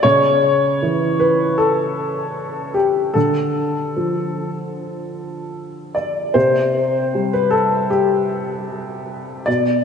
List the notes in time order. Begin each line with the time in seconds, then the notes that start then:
0.03 C#3 C#5
0.82 E3
1.20 B4
1.58 A4
2.74 G4
3.14 D3 A4
3.96 F3
5.95 D5
6.34 C3 C5
7.15 G3
7.33 B4
7.51 A4
7.90 G4
9.46 B2 D5